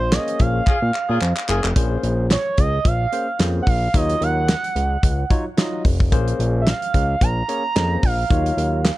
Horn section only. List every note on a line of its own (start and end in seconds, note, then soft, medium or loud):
0.67 0.77 C#4 medium
0.67 0.77 F4 loud
0.67 0.77 G#4 loud
1.09 1.17 C#4 medium
1.09 1.17 F4 medium
1.09 1.17 G#4 loud
1.48 1.66 C#4 medium
1.48 1.66 F4 medium
1.48 1.66 G#4 loud